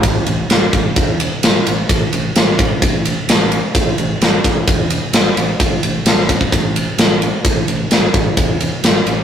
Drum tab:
RD |x-x-x-x-x-x-x-x-|x-x-x-x-x-x-x-x-|x-x-x-x-x-x-x-x-|x-x-x-x-x-x-x-x-|
SD |----o-------o---|----o-------o---|----o-------o---|----o-------o---|
BD |o-----o-o-------|o-----o-o-------|o-----o-o-------|o-----ooo-------|

RD |x-x-x-x-x-x-x-x-|
SD |----o-------o---|
BD |o-----o-o-------|